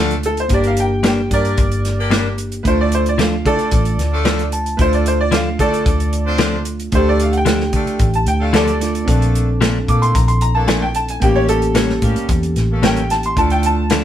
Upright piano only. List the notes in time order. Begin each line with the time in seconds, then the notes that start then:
0.26 A4
0.40 C5
0.54 D5
0.67 F5
0.80 G5
1.06 G5
1.34 A#4 D5
2.63 B4
2.68 C5
2.81 D5
2.95 C5
3.09 D5
3.21 F5
3.46 A4 D5
4.77 B4
4.81 C5
4.94 D5
5.08 C5
5.21 D5
5.34 F5
5.60 A4 D5
6.95 C5
7.09 D5
7.23 F5
7.33 F#5
7.38 G5
8.15 A5
8.28 G5
8.41 F5
8.55 A4 D5
9.89 D6
10.02 C6
10.15 A#5
10.28 C6
10.42 A#5
10.55 A5
10.68 G#5
10.82 G5
10.96 A5
11.10 G#5
11.22 G5
11.36 C#5
11.49 A4
12.84 G5
13.11 A5
13.26 C6
13.38 A5
13.52 G5
13.66 A5